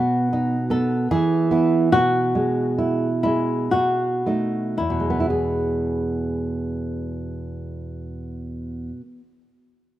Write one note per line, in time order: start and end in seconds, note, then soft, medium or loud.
0.00 1.07 B2 soft
0.00 0.55 B3 soft
0.00 0.67 F#4 medium
0.33 0.94 D#4 soft
0.70 1.10 B3 soft
0.70 1.08 A4 soft
1.11 1.91 E3 soft
1.11 1.89 G#4 soft
1.51 1.89 B3 soft
1.51 1.89 E4 soft
1.92 3.69 B2 soft
1.92 3.20 F#4 medium
2.35 3.06 G#3 soft
2.78 3.53 E4 soft
3.23 3.73 G#3 soft
3.23 3.69 E4 soft
3.71 4.76 B2 soft
3.71 4.75 F#4 soft
4.26 4.76 A3 soft
4.26 4.76 D#4 soft
4.78 8.90 E2 soft
4.78 8.88 E4 soft
4.90 9.01 B2 soft
5.00 9.11 G#3 soft
5.10 9.21 B3 soft
5.20 5.30 E4 soft
5.30 9.41 G#4 soft